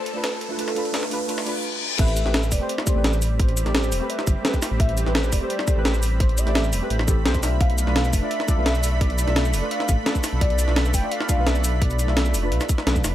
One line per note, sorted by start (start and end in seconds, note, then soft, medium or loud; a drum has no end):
0.00 1.60 A3 medium
0.00 1.60 D4 medium
0.00 1.61 A4 medium
0.00 riser medium
0.06 closed hi-hat medium
0.14 0.22 A3 medium
0.14 0.22 D4 medium
0.14 0.23 F4 medium
0.14 0.23 B4 loud
0.24 0.32 B4 medium
0.24 snare loud
0.24 closed hi-hat medium
0.41 1.60 A4 medium
0.41 closed hi-hat medium
0.49 0.56 A3 medium
0.49 0.57 D4 medium
0.49 0.58 F4 medium
0.49 0.58 B4 loud
0.57 0.73 A3 loud
0.57 0.75 D4 medium
0.57 0.75 F4 medium
0.57 0.76 B4 loud
0.57 closed hi-hat loud
0.68 snare soft
0.68 closed hi-hat soft
0.75 0.91 A3 medium
0.75 0.92 D4 medium
0.75 0.93 F4 medium
0.75 0.93 B4 loud
0.75 closed hi-hat medium
0.85 closed hi-hat soft
0.92 1.09 A3 medium
0.92 1.10 D4 medium
0.92 1.10 F4 medium
0.92 1.11 B4 loud
0.92 snare loud
0.92 closed hi-hat loud
1.03 snare medium
1.10 1.26 A3 loud
1.10 1.27 D4 medium
1.10 1.28 F4 medium
1.10 1.28 B4 loud
1.10 open hi-hat medium
1.27 1.44 A3 loud
1.27 1.45 D4 medium
1.27 1.45 F4 medium
1.27 1.46 B4 loud
1.27 closed hi-hat loud
1.27 reverse cymbal medium
1.38 snare medium
1.38 closed hi-hat soft
1.45 1.62 A3 loud
1.45 1.62 D4 medium
1.45 1.63 F4 medium
1.45 1.64 B4 loud
1.45 closed hi-hat medium
1.98 2.24 A1 loud
1.98 7.39 G3 medium
1.98 2.21 A3 loud
1.98 2.22 C4 loud
1.98 7.39 C4 medium
1.98 2.22 G4 medium
1.98 2.23 B4 loud
1.98 2.54 E5 loud
1.98 13.15 B5 loud
1.98 kick loud
1.98 closed hi-hat loud
1.98 crash loud
2.08 closed hi-hat soft
2.17 closed hi-hat medium
2.17 cabasa medium
2.24 2.53 A1 loud
2.24 2.58 A3 medium
2.24 2.58 C4 medium
2.24 2.59 G4 medium
2.24 2.59 B4 loud
2.24 snare soft
2.34 snare loud
2.34 closed hi-hat loud
2.43 cabasa soft
2.52 2.60 E1 medium
2.52 3.41 D5 loud
2.52 kick medium
2.52 open hi-hat medium
2.52 cabasa medium
2.59 2.70 A3 medium
2.59 2.71 C4 medium
2.59 2.71 G4 medium
2.59 2.72 C5 loud
2.69 closed hi-hat loud
2.78 snare medium
2.85 2.93 A3 medium
2.85 2.94 C4 medium
2.85 2.95 G4 medium
2.85 2.95 C5 medium
2.85 kick loud
2.85 closed hi-hat medium
2.85 cabasa medium
2.94 3.04 A1 medium
2.94 3.05 A3 loud
2.94 3.06 C4 medium
2.94 3.06 G4 medium
2.94 3.07 B4 loud
3.04 3.65 A1 loud
3.04 snare loud
3.04 closed hi-hat medium
3.13 cabasa soft
3.22 open hi-hat medium
3.22 cabasa medium
3.40 3.74 C5 loud
3.40 kick loud
3.40 closed hi-hat medium
3.48 closed hi-hat soft
3.57 closed hi-hat medium
3.57 cabasa medium
3.65 3.94 A1 loud
3.65 3.98 A3 medium
3.65 3.99 C4 medium
3.65 3.99 G4 medium
3.65 4.00 D5 medium
3.65 snare soft
3.65 closed hi-hat soft
3.75 4.11 C5 medium
3.75 snare loud
3.75 closed hi-hat medium
3.84 cabasa soft
3.92 4.00 E1 medium
3.92 open hi-hat medium
3.92 cabasa medium
4.00 4.17 A3 medium
4.00 4.18 C4 medium
4.00 4.18 G4 medium
4.00 4.19 B4 loud
4.10 4.45 E5 loud
4.10 closed hi-hat medium
4.19 snare medium
4.27 4.35 G1 medium
4.27 kick loud
4.27 closed hi-hat medium
4.27 cabasa medium
4.42 5.03 A3 medium
4.42 5.04 C4 medium
4.42 snare loud
4.42 closed hi-hat medium
4.46 5.05 G4 medium
4.46 5.06 B4 medium
4.54 kick medium
4.54 cabasa soft
4.62 snare medium
4.62 open hi-hat medium
4.62 cabasa medium
4.71 4.79 A1 medium
4.80 5.05 A1 loud
4.80 5.13 E5 loud
4.80 kick loud
4.80 closed hi-hat loud
4.89 closed hi-hat soft
4.97 closed hi-hat medium
4.97 cabasa medium
5.05 5.34 A1 loud
5.05 5.39 A3 loud
5.05 5.39 C4 medium
5.05 5.40 G4 medium
5.05 5.40 B4 loud
5.05 snare soft
5.15 snare loud
5.15 closed hi-hat medium
5.24 cabasa soft
5.32 5.41 E1 medium
5.32 5.99 D5 loud
5.32 kick medium
5.32 open hi-hat medium
5.32 cabasa medium
5.40 5.51 A3 medium
5.40 5.51 C4 medium
5.40 5.52 G4 medium
5.40 5.53 C5 loud
5.50 closed hi-hat medium
5.59 snare medium
5.66 5.74 A3 medium
5.66 5.75 C4 medium
5.66 5.76 G4 medium
5.66 5.76 C5 medium
5.66 kick loud
5.66 closed hi-hat medium
5.66 cabasa medium
5.75 5.84 A1 medium
5.75 5.86 A3 medium
5.75 5.87 C4 medium
5.75 5.87 G4 medium
5.75 5.88 B4 loud
5.85 6.45 A1 loud
5.85 snare loud
5.85 closed hi-hat medium
5.94 cabasa soft
6.03 open hi-hat medium
6.03 cabasa medium
6.20 6.39 C5 loud
6.20 kick loud
6.20 closed hi-hat medium
6.29 closed hi-hat soft
6.38 7.08 E5 loud
6.38 closed hi-hat medium
6.38 cabasa medium
6.45 6.74 A1 loud
6.45 6.79 A3 medium
6.45 6.79 C4 medium
6.45 6.80 G4 medium
6.45 6.80 D5 medium
6.45 snare soft
6.45 closed hi-hat soft
6.55 snare loud
6.55 closed hi-hat medium
6.64 cabasa soft
6.73 6.81 E1 medium
6.73 open hi-hat medium
6.73 cabasa medium
6.80 6.98 A3 medium
6.80 6.98 C4 medium
6.80 6.99 G4 medium
6.80 6.99 B4 loud
6.90 7.27 A1 medium
6.90 closed hi-hat medium
6.99 snare medium
7.06 7.23 A3 medium
7.06 7.23 C4 medium
7.06 7.24 G4 medium
7.06 7.24 A4 loud
7.06 kick loud
7.06 closed hi-hat medium
7.06 cabasa medium
7.24 7.59 B1 medium
7.24 7.39 A3 medium
7.24 7.41 C4 medium
7.24 7.41 G4 medium
7.24 7.42 C5 loud
7.24 snare loud
7.24 closed hi-hat medium
7.34 kick medium
7.34 cabasa soft
7.40 7.83 A3 medium
7.40 13.15 A3 medium
7.40 7.84 D4 medium
7.40 13.15 D4 medium
7.40 snare medium
7.40 open hi-hat medium
7.40 cabasa medium
7.44 7.86 F4 medium
7.44 7.87 E5 loud
7.61 7.86 B1 loud
7.61 8.15 F5 loud
7.61 kick loud
7.61 closed hi-hat medium
7.70 closed hi-hat soft
7.78 closed hi-hat medium
7.78 cabasa medium
7.86 8.15 B1 loud
7.86 8.19 A3 loud
7.86 8.20 D4 medium
7.86 8.20 F4 medium
7.86 8.21 B4 loud
7.86 snare soft
7.96 snare loud
7.96 closed hi-hat medium
8.05 cabasa soft
8.13 8.21 F1 medium
8.13 9.02 E5 loud
8.13 kick medium
8.13 open hi-hat medium
8.13 cabasa medium
8.21 8.32 A3 medium
8.21 8.32 D4 medium
8.21 8.33 F4 medium
8.21 8.33 D5 medium
8.31 closed hi-hat medium
8.40 snare medium
8.47 8.55 A3 medium
8.47 8.56 D4 medium
8.47 8.56 F4 medium
8.47 8.57 D5 medium
8.47 kick loud
8.47 closed hi-hat medium
8.47 cabasa medium
8.56 8.65 B1 medium
8.56 8.67 A3 loud
8.56 8.67 D4 medium
8.56 8.68 F4 medium
8.56 8.68 B4 loud
8.66 9.26 B1 loud
8.66 snare loud
8.66 closed hi-hat medium
8.75 cabasa soft
8.83 open hi-hat medium
8.83 cabasa medium
9.01 9.36 D5 loud
9.01 kick loud
9.01 closed hi-hat medium
9.10 closed hi-hat soft
9.19 closed hi-hat medium
9.19 cabasa medium
9.26 9.55 B1 loud
9.26 9.60 A3 medium
9.26 9.60 D4 medium
9.26 9.61 F4 medium
9.26 9.61 E5 medium
9.26 snare soft
9.26 closed hi-hat soft
9.36 9.73 D5 loud
9.36 snare loud
9.36 closed hi-hat medium
9.45 cabasa soft
9.54 9.62 F1 loud
9.54 open hi-hat medium
9.54 cabasa medium
9.61 9.79 A3 medium
9.61 9.79 D4 medium
9.61 9.80 F4 medium
9.61 9.80 B4 loud
9.71 10.06 F5 loud
9.71 closed hi-hat medium
9.80 snare medium
9.89 9.97 A1 medium
9.89 kick loud
9.89 closed hi-hat medium
9.89 cabasa medium
10.03 10.64 A3 medium
10.03 10.65 D4 medium
10.03 snare loud
10.03 closed hi-hat medium
10.07 10.66 F4 medium
10.07 10.67 B4 medium
10.15 kick medium
10.15 cabasa soft
10.24 snare medium
10.24 open hi-hat medium
10.24 cabasa medium
10.33 10.40 B1 medium
10.41 10.66 B1 loud
10.41 10.74 D5 loud
10.41 kick loud
10.41 closed hi-hat loud
10.50 closed hi-hat soft
10.59 closed hi-hat medium
10.59 cabasa medium
10.66 10.95 B1 loud
10.66 11.00 A3 medium
10.66 11.00 D4 medium
10.66 11.01 F4 medium
10.66 11.02 B4 loud
10.66 snare soft
10.76 snare loud
10.76 closed hi-hat loud
10.85 cabasa soft
10.94 11.02 F1 medium
10.94 11.10 G5 loud
10.94 kick medium
10.94 open hi-hat medium
10.94 cabasa medium
11.01 11.12 A3 medium
11.01 11.13 D4 medium
11.01 11.14 F4 medium
11.01 11.14 D5 medium
11.11 11.48 F5 loud
11.11 closed hi-hat loud
11.21 snare medium
11.27 11.35 A3 medium
11.27 11.36 D4 medium
11.27 11.37 F4 medium
11.27 11.37 D5 medium
11.27 kick loud
11.27 closed hi-hat medium
11.27 cabasa medium
11.37 11.46 B1 medium
11.37 11.48 A3 medium
11.37 11.48 D4 medium
11.37 11.49 F4 medium
11.37 11.49 B4 loud
11.47 12.07 B1 loud
11.47 11.83 E5 loud
11.47 snare loud
11.47 closed hi-hat loud
11.56 cabasa soft
11.64 open hi-hat medium
11.64 cabasa medium
11.82 12.52 D5 medium
11.82 kick loud
11.82 closed hi-hat loud
11.91 closed hi-hat soft
11.91 cabasa soft
11.99 closed hi-hat medium
11.99 cabasa medium
12.07 12.36 B1 loud
12.07 12.40 A3 medium
12.07 12.41 D4 medium
12.07 12.41 F4 medium
12.07 12.42 E5 medium
12.07 snare soft
12.17 snare loud
12.17 closed hi-hat loud
12.26 cabasa soft
12.34 12.53 F1 medium
12.34 open hi-hat medium
12.34 cabasa medium
12.42 12.59 A3 medium
12.42 12.60 D4 medium
12.42 12.60 F4 medium
12.42 12.61 B4 loud
12.52 12.60 B1 medium
12.52 closed hi-hat medium
12.61 snare medium
12.61 closed hi-hat soft
12.61 cabasa soft
12.69 kick loud
12.69 closed hi-hat medium
12.69 cabasa medium
12.78 snare medium
12.85 13.03 B1 medium
12.85 13.15 A3 medium
12.85 13.15 D4 medium
12.85 13.15 F4 medium
12.85 13.15 B4 medium
12.85 snare loud
12.85 closed hi-hat loud
12.96 kick medium
12.96 cabasa soft
13.04 13.15 F1 medium
13.04 snare medium
13.04 open hi-hat medium
13.04 cabasa medium